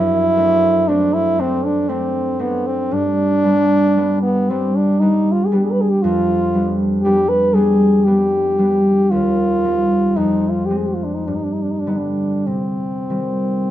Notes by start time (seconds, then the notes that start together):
Already playing: F#2 D4 E4
0.37 A3 C4 D4
0.88 A3 C4 D4
1.14 E4
1.38 A3 C4 D4
1.65 D4
1.89 A3 C4 D4
2.39 A3 B3 C4 D4
2.67 C4
2.91 G2 D4
3.44 G3 B3 D4
3.97 G3 B3 D4
4.22 B3
4.50 G3 B3 C4 D4
4.76 D4
5.00 G3 B3 D4 D#4
5.32 F4
5.46 G#4
5.52 G3 B3 D4 G4
5.64 G#4
5.71 B4
5.81 G#4
5.90 G4
6.02 F2 F4
6.54 G3 B3 D4
7.03 G3 B3 D4 G4
7.29 B4
7.54 G3 B3 D4 G#4
8.05 G3 B3 D4 G4
8.58 G3 B3 D4
9.11 D#2 F4
9.64 G3 C4 D#4
10.16 F2 D#4
10.51 F4
10.66 G4
10.70 G#3 C4
10.77 G#4
10.87 G4
10.95 F4
11.04 D4
11.15 D#4
11.27 G2 D4
11.36 D#4
11.44 D4
11.53 D#4
11.62 D4
11.71 D#4
11.79 D4
11.86 D3 G3 B3 D#4
11.97 D4
12.47 C3 C4
13.10 D#3 G3 C4